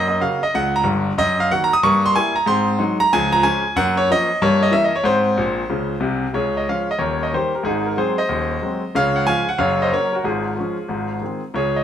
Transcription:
0.00 0.16 F#2 medium
0.00 0.21 A#3 medium
0.00 0.08 D#5 loud
0.08 0.20 D#5 medium
0.20 0.38 C#3 medium
0.20 0.38 A#3 soft
0.20 0.38 F#4 medium
0.20 0.42 F5 medium
0.43 0.53 D#5 medium
0.54 0.81 C#2 medium
0.54 0.74 F#5 loud
0.76 0.86 A#5 loud
0.84 1.10 G1 medium
0.84 1.10 G2 medium
1.18 1.45 F#2 medium
1.18 1.39 D#5 loud
1.40 1.50 F5 loud
1.51 1.68 D#3 medium
1.51 1.69 A#3 medium
1.51 1.69 F#4 medium
1.51 1.61 F#5 loud
1.64 1.73 A#5 loud
1.73 1.83 D#6 loud
1.83 2.10 G2 medium
1.83 2.02 A#3 medium
1.83 2.03 C#6 loud
2.06 2.15 C6 loud
2.15 2.33 G3 medium
2.15 2.33 A#3 medium
2.15 2.34 E4 medium
2.15 2.36 G#5 loud
2.36 2.46 A#5 medium
2.46 2.74 G#2 medium
2.46 2.65 C4 medium
2.46 3.00 C6 loud
2.79 2.96 F#3 medium
2.79 2.97 G#3 medium
2.79 2.96 D#4 medium
3.00 3.11 A#5 loud
3.13 3.39 C#2 loud
3.13 3.31 F3 medium
3.13 3.33 G#5 loud
3.33 3.43 A#5 loud
3.43 3.61 F3 medium
3.43 3.61 G#3 medium
3.43 3.61 C#4 medium
3.43 3.75 G#5 loud
3.76 4.03 F#2 loud
3.76 3.95 A#3 medium
3.76 3.97 F#5 loud
3.97 4.08 C#5 loud
4.10 4.27 F3 medium
4.10 4.28 A#3 medium
4.10 4.28 C#4 medium
4.10 4.42 D#5 loud
4.42 4.68 G2 loud
4.42 4.60 A#3 medium
4.42 4.62 C#5 loud
4.63 4.73 D#5 medium
4.71 4.89 E3 medium
4.71 4.90 A#3 medium
4.71 4.90 C#4 medium
4.71 4.83 E5 loud
4.84 4.94 D#5 medium
4.96 5.05 C#5 medium
5.04 5.31 G#2 loud
5.04 5.23 C4 medium
5.04 6.02 C5 loud
5.37 5.61 A#1 medium
5.37 5.62 A#2 medium
5.69 5.94 C#2 medium
5.69 5.94 C#3 medium
6.00 6.25 C2 medium
6.00 6.25 C3 medium
6.34 6.61 C#2 medium
6.34 6.62 C#3 medium
6.34 6.55 G#4 medium
6.34 6.56 C#5 medium
6.57 6.67 D#5 medium
6.69 6.86 F3 soft
6.69 6.86 G#3 soft
6.69 6.86 C#4 soft
6.69 6.89 C#5 medium
6.69 6.89 F5 medium
6.91 7.00 D#5 medium
6.98 7.26 D#1 medium
6.98 7.26 D#2 medium
6.98 7.20 A#4 medium
6.98 7.20 C#5 medium
7.23 7.33 D#5 medium
7.33 7.50 D#3 soft
7.33 7.51 G3 soft
7.33 7.51 A#3 soft
7.33 7.53 G4 medium
7.33 7.54 C5 medium
7.55 7.65 G4 soft
7.55 7.65 A#4 medium
7.63 7.91 G#1 medium
7.63 7.91 G#2 medium
7.63 7.85 D#4 medium
7.63 7.86 G#4 medium
7.86 7.97 A#4 medium
7.96 8.14 F#3 soft
7.96 8.15 G#3 soft
7.96 8.15 C4 soft
7.96 8.17 G#4 medium
7.96 8.17 C5 medium
8.18 8.90 C5 medium
8.18 8.94 D#5 medium
8.28 8.56 D#1 medium
8.28 8.56 D#2 medium
8.62 8.80 F#3 soft
8.62 8.80 G#3 soft
8.62 8.81 C4 medium
8.95 9.22 C#2 medium
8.95 9.22 C#3 medium
8.95 9.15 C#5 medium
8.95 9.16 F5 loud
9.16 9.26 F#5 medium
9.26 9.44 F3 soft
9.26 9.44 G#3 medium
9.26 9.45 C#4 medium
9.26 9.47 F5 medium
9.26 9.48 G#5 loud
9.49 9.59 F#5 loud
9.58 9.86 F#1 medium
9.58 9.86 F#2 medium
9.58 9.79 C#5 medium
9.58 9.80 F5 medium
9.82 9.92 C5 medium
9.82 9.92 D#5 medium
9.93 10.10 F#3 soft
9.93 10.10 A#3 soft
9.93 10.10 C#4 soft
9.93 10.11 A#4 medium
9.93 10.13 C#5 medium
10.13 10.24 F#4 medium
10.13 10.24 A#4 medium
10.24 10.52 G#1 medium
10.24 10.51 G#2 medium
10.24 11.40 F4 soft
10.24 11.43 G#4 medium
10.58 10.76 F3 soft
10.58 10.76 G#3 soft
10.58 10.76 C#4 soft
10.88 11.16 G#1 medium
10.88 11.17 G#2 medium
11.21 11.39 D#3 soft
11.21 11.39 G#3 soft
11.21 11.40 C4 soft
11.54 11.81 C#2 medium
11.54 11.81 C#3 medium
11.54 11.75 G#4 medium
11.54 11.76 C#5 medium
11.76 11.84 D#5 medium

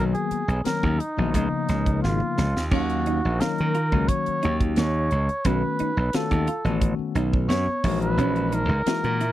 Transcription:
0.00 0.13 B1 medium
0.00 0.41 D#3 medium
0.00 0.41 F#3 medium
0.00 0.41 A#3 medium
0.00 0.42 B3 medium
0.00 0.41 F#4 medium
0.13 0.61 G#4 medium
0.13 closed hi-hat soft
0.31 muted slap bass stroke soft
0.31 closed hi-hat medium
0.48 0.64 B1 medium
0.48 closed hi-hat soft
0.64 0.98 D#3 medium
0.64 0.98 F#3 medium
0.64 0.98 A#3 medium
0.64 0.98 B3 medium
0.64 0.98 C#4 medium
0.64 1.01 A#4 medium
0.64 muted slap bass stroke soft
0.64 snare medium
0.64 closed hi-hat medium
0.83 0.98 D#2 medium
0.83 kick medium
1.00 2.02 D#4 medium
1.00 closed hi-hat medium
1.17 1.33 A#1 medium
1.17 1.34 D#3 medium
1.17 1.34 F#3 medium
1.17 1.34 A#3 medium
1.17 1.34 B3 medium
1.17 1.34 F#4 medium
1.34 1.51 C#2 medium
1.34 2.44 C#3 medium
1.34 2.44 F3 medium
1.34 2.44 A#3 medium
1.34 2.45 B3 medium
1.34 2.45 D#4 medium
1.34 kick medium
1.34 closed hi-hat medium
1.69 2.01 C#2 medium
1.69 snare soft
1.69 closed hi-hat medium
1.86 kick medium
1.86 closed hi-hat soft
2.02 2.20 G#1 medium
2.02 2.67 F4 medium
2.02 snare medium
2.20 muted slap bass stroke soft
2.20 mid tom soft
2.38 2.54 C#2 medium
2.38 snare medium
2.56 2.70 D#2 medium
2.56 snare medium
2.71 3.20 D#2 medium
2.71 3.16 D#3 medium
2.71 3.16 F#3 medium
2.71 3.16 A#3 medium
2.71 3.02 C#4 medium
2.71 3.17 C#4 medium
2.71 3.42 F#4 medium
2.71 3.17 F5 medium
2.71 kick medium
2.71 crash medium
2.90 closed hi-hat soft
3.06 3.37 D#4 medium
3.06 closed hi-hat soft
3.25 3.39 A#1 medium
3.40 3.73 D#3 medium
3.40 3.73 F#3 medium
3.40 3.73 A#3 medium
3.40 3.73 C#4 medium
3.40 3.74 D#4 medium
3.40 3.71 F4 medium
3.40 4.10 A#4 medium
3.40 snare medium
3.40 closed hi-hat medium
3.58 3.91 D#3 medium
3.58 closed hi-hat soft
3.75 4.05 F4 medium
3.75 closed hi-hat soft
3.92 4.07 C#2 medium
3.92 4.79 D#3 medium
3.92 4.80 F#3 medium
3.92 4.80 A#3 medium
3.92 4.80 C#4 medium
3.92 4.80 F#4 medium
3.92 kick medium
4.08 4.61 C#5 medium
4.08 kick medium
4.08 closed hi-hat medium
4.26 muted slap bass stroke soft
4.26 closed hi-hat soft
4.43 4.76 D#2 medium
4.43 4.73 D#4 medium
4.43 closed hi-hat soft
4.60 kick medium
4.60 closed hi-hat soft
4.76 5.09 D#2 medium
4.76 5.08 A#3 medium
4.76 5.48 C#5 medium
4.76 snare medium
4.76 closed hi-hat medium
5.11 5.28 C#2 medium
5.11 closed hi-hat medium
5.29 muted slap bass stroke soft
5.29 closed hi-hat soft
5.45 5.62 B1 loud
5.45 5.90 D#3 medium
5.45 5.90 A3 medium
5.45 5.90 B3 medium
5.45 5.76 C#4 medium
5.45 5.90 C#4 medium
5.45 5.91 F#4 medium
5.45 6.17 B4 medium
5.45 kick medium
5.45 closed hi-hat medium
5.79 6.10 D#4 medium
5.79 muted slap bass stroke soft
5.79 closed hi-hat medium
5.97 6.12 B1 medium
6.13 6.47 D#3 medium
6.13 6.47 A3 medium
6.13 6.47 B3 medium
6.13 6.47 C#4 medium
6.13 6.45 F4 medium
6.13 6.47 F#4 medium
6.13 6.83 A4 medium
6.13 snare loud
6.13 closed hi-hat medium
6.31 6.47 D#2 medium
6.31 kick medium
6.31 closed hi-hat soft
6.47 6.79 F4 medium
6.47 closed hi-hat medium
6.65 6.97 A1 medium
6.65 7.54 D#3 medium
6.65 7.54 A3 medium
6.65 7.54 B3 medium
6.65 7.54 C#4 medium
6.65 7.54 F#4 medium
6.65 closed hi-hat soft
6.82 kick medium
6.82 closed hi-hat medium
6.99 muted slap bass stroke soft
7.15 7.48 B1 medium
7.15 7.47 D#4 medium
7.15 closed hi-hat medium
7.34 kick medium
7.49 7.66 F#2 medium
7.49 7.81 B3 medium
7.49 7.98 C#5 medium
7.49 snare loud
7.49 closed hi-hat medium
7.67 muted slap bass stroke soft
7.84 8.16 A#1 medium
7.84 8.68 A#2 medium
7.84 8.67 E3 medium
7.84 8.68 G#3 medium
7.84 8.68 D#4 medium
7.84 8.68 F#4 medium
7.84 kick medium
7.84 open hi-hat medium
8.02 8.56 B4 medium
8.02 closed hi-hat soft
8.17 8.67 A#1 loud
8.17 8.49 C#4 medium
8.17 closed hi-hat medium
8.36 closed hi-hat soft
8.52 8.83 D#4 medium
8.52 9.32 A#4 medium
8.52 closed hi-hat medium
8.69 8.85 C#2 medium
8.86 9.20 E3 medium
8.86 9.20 G#3 medium
8.86 9.20 A#3 medium
8.86 9.20 D#4 medium
8.86 9.18 E4 medium
8.86 9.21 F#4 medium
8.86 muted slap bass stroke soft
8.86 snare loud
8.86 closed hi-hat medium
9.04 9.32 A#2 medium
9.04 closed hi-hat soft
9.21 9.32 E4 medium
9.21 closed hi-hat medium

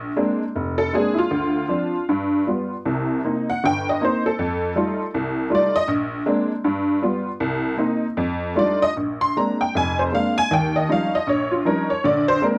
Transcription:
0.00 0.11 A#1 medium
0.17 0.42 G#3 medium
0.17 0.42 A#3 medium
0.17 0.42 C4 medium
0.17 0.42 D4 medium
0.55 0.87 F1 medium
0.78 0.91 A4 medium
0.93 1.18 G#3 medium
0.93 1.18 A#3 soft
0.93 1.18 C4 soft
0.93 1.19 D4 medium
0.93 1.17 G#4 medium
1.14 1.16 E4 medium
1.18 2.04 F4 medium
1.31 1.63 D2 medium
1.68 1.94 F3 medium
1.68 1.95 C4 soft
1.68 1.95 D4 medium
2.09 2.41 G2 medium
2.47 2.72 G3 soft
2.47 2.73 B3 soft
2.47 2.73 F4 medium
2.85 3.19 C2 medium
2.85 3.19 C3 medium
3.24 3.50 A#3 medium
3.24 3.50 C4 soft
3.24 3.50 D#4 medium
3.50 3.63 F#5 medium
3.64 3.96 G1 medium
3.64 3.88 G5 medium
3.89 4.02 D#5 medium
4.01 4.26 A#3 medium
4.01 4.26 C4 soft
4.01 4.27 D#4 medium
4.01 4.26 C5 medium
4.26 5.10 A4 medium
4.39 4.71 F2 medium
4.76 5.01 G3 medium
4.76 5.01 A3 medium
4.76 5.01 D#4 medium
4.76 5.02 F4 medium
5.14 5.46 C2 medium
5.50 5.75 G3 medium
5.50 5.76 A3 medium
5.50 5.76 D#4 medium
5.50 5.76 F4 medium
5.55 5.76 D5 medium
5.76 5.88 D#5 loud
5.88 6.20 A#1 medium
6.26 6.51 G#3 medium
6.26 6.51 A#3 medium
6.26 6.51 C4 medium
6.26 6.51 D4 medium
6.64 6.96 G2 medium
7.02 7.27 G3 medium
7.02 7.27 B3 medium
7.02 7.28 F4 medium
7.40 7.73 C2 medium
7.77 8.04 A#3 medium
7.77 8.04 C4 medium
7.77 8.04 D#4 medium
8.17 8.52 F2 medium
8.55 8.83 G3 medium
8.55 8.83 A3 soft
8.55 8.83 D4 medium
8.55 8.83 D#4 medium
8.55 8.83 F4 medium
8.55 8.83 D5 medium
8.82 8.91 D#5 loud
8.97 9.30 A#1 medium
9.21 9.35 C6 medium
9.37 9.62 G#3 soft
9.37 9.63 A#3 soft
9.37 9.63 C4 soft
9.37 9.63 D4 medium
9.37 9.60 A#5 medium
9.61 9.74 G5 medium
9.75 10.08 F1 medium
9.75 10.08 F2 medium
9.75 9.99 G#5 medium
9.99 10.13 C5 medium
10.12 10.38 G#3 soft
10.12 10.38 A#3 soft
10.12 10.39 C4 soft
10.12 10.39 D4 medium
10.12 10.38 F5 medium
10.38 10.51 G#5 loud
10.51 10.84 D#2 medium
10.51 10.76 G5 medium
10.76 10.89 D#5 medium
10.89 11.15 F3 medium
10.89 11.15 G3 medium
10.89 11.15 C#4 soft
10.89 11.15 D#4 medium
10.89 11.14 F5 medium
11.15 11.28 D#5 medium
11.27 11.60 A#1 medium
11.27 11.52 C#5 medium
11.51 11.65 F4 medium
11.65 11.91 F3 medium
11.65 11.91 G3 soft
11.65 11.91 C#4 soft
11.65 11.91 D#4 medium
11.65 11.89 A#4 medium
11.90 12.03 C#5 medium
12.04 12.36 A#1 medium
12.04 12.36 D3 medium
12.04 12.28 D5 medium
12.28 12.41 C5 medium
12.42 12.58 G#3 medium
12.42 12.58 A#3 medium
12.42 12.58 C4 medium
12.42 12.58 D4 medium
12.42 12.58 A#4 medium

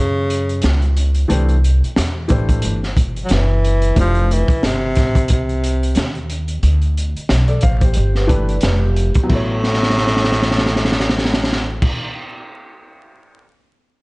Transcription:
0.00 0.60 F#2 medium
0.00 0.98 C#3 medium
0.30 closed hi-hat medium
0.49 closed hi-hat soft
0.62 1.27 C#2 loud
0.62 snare loud
0.62 closed hi-hat medium
0.82 closed hi-hat soft
0.97 closed hi-hat medium
1.15 closed hi-hat soft
1.28 1.80 C2 loud
1.28 1.54 E3 medium
1.28 1.54 A3 medium
1.28 1.54 D4 medium
1.28 1.54 G4 medium
1.28 1.55 C5 medium
1.28 closed hi-hat medium
1.49 closed hi-hat soft
1.64 closed hi-hat medium
1.83 muted upright bass stroke soft
1.83 closed hi-hat soft
1.96 2.29 E2 medium
1.96 snare loud
1.96 closed hi-hat medium
2.28 2.62 A1 loud
2.28 2.77 E3 medium
2.28 2.78 A3 medium
2.28 2.78 D4 medium
2.28 2.79 G4 medium
2.28 2.79 C5 medium
2.28 kick medium
2.28 closed hi-hat medium
2.49 kick medium
2.49 closed hi-hat medium
2.62 3.27 G1 medium
2.62 closed hi-hat medium
2.83 snare soft
2.97 kick loud
2.97 closed hi-hat medium
3.16 closed hi-hat soft
3.25 3.34 F#3 medium
3.25 closed hi-hat medium
3.31 3.94 F#1 medium
3.31 3.98 E3 loud
3.31 snare loud
3.64 closed hi-hat medium
3.82 closed hi-hat medium
3.95 4.46 F1 loud
3.95 4.37 A3 medium
3.95 4.37 D4 medium
3.95 4.37 E4 medium
3.95 4.38 G4 medium
3.95 4.38 C5 medium
3.95 kick medium
3.95 closed hi-hat medium
4.00 4.34 F3 loud
4.15 closed hi-hat soft
4.31 4.67 E3 loud
4.31 closed hi-hat medium
4.48 kick loud
4.48 closed hi-hat soft
4.63 4.97 G1 medium
4.63 5.31 C3 loud
4.63 snare loud
4.63 closed hi-hat medium
4.95 5.28 A1 loud
4.95 kick medium
4.95 snare soft
4.95 closed hi-hat medium
5.15 kick medium
5.15 closed hi-hat soft
5.28 5.93 C2 medium
5.28 6.27 C3 medium
5.28 kick medium
5.28 closed hi-hat medium
5.49 closed hi-hat soft
5.64 closed hi-hat medium
5.83 closed hi-hat soft
5.95 6.60 D#2 medium
5.95 snare loud
5.95 closed hi-hat medium
6.15 closed hi-hat soft
6.30 closed hi-hat medium
6.48 closed hi-hat soft
6.63 7.13 D2 loud
6.63 closed hi-hat medium
6.82 closed hi-hat soft
6.97 closed hi-hat medium
7.16 muted upright bass stroke soft
7.16 closed hi-hat soft
7.29 7.61 B1 medium
7.29 snare loud
7.29 closed hi-hat medium
7.48 7.62 A4 medium
7.48 7.62 D5 medium
7.48 closed hi-hat soft
7.61 7.95 A1 medium
7.61 7.80 C5 medium
7.61 7.81 F5 medium
7.61 kick medium
7.61 closed hi-hat medium
7.81 8.14 G4 medium
7.81 8.13 C5 medium
7.81 kick medium
7.81 closed hi-hat medium
7.94 8.60 G1 medium
7.94 8.15 G4 medium
7.94 closed hi-hat medium
8.15 8.47 G4 medium
8.15 8.47 B4 medium
8.15 snare soft
8.27 8.53 E3 medium
8.27 8.54 A3 medium
8.27 8.54 D4 medium
8.27 8.54 G4 medium
8.27 8.55 B4 medium
8.27 kick loud
8.27 closed hi-hat medium
8.49 8.62 B4 medium
8.49 8.62 D5 medium
8.49 closed hi-hat soft
8.61 9.13 F1 medium
8.61 8.81 G4 medium
8.61 8.81 B4 medium
8.61 snare loud
8.61 closed hi-hat medium
8.82 9.27 G4 medium
8.96 closed hi-hat medium
9.14 muted upright bass stroke medium
9.14 kick medium
9.14 closed hi-hat medium
9.23 11.86 F#3 medium
9.23 11.88 B3 medium
9.29 11.90 A1 medium
9.29 11.91 A2 loud
9.29 11.89 E4 medium
9.29 11.91 A4 medium
9.29 kick medium
9.29 crash medium
9.35 11.92 C#5 medium
9.64 snare soft
9.74 snare soft
9.83 snare medium
9.90 snare medium
9.98 snare medium
10.07 snare medium
10.17 snare medium
10.24 snare medium
10.32 snare medium
10.42 snare medium
10.51 snare medium
10.58 snare medium
10.66 snare medium
10.76 snare medium
10.85 snare medium
10.92 snare medium
11.00 snare medium
11.09 snare medium
11.18 snare medium
11.25 snare medium
11.34 snare loud
11.44 snare medium
11.52 snare medium
11.82 kick loud
11.82 crash loud

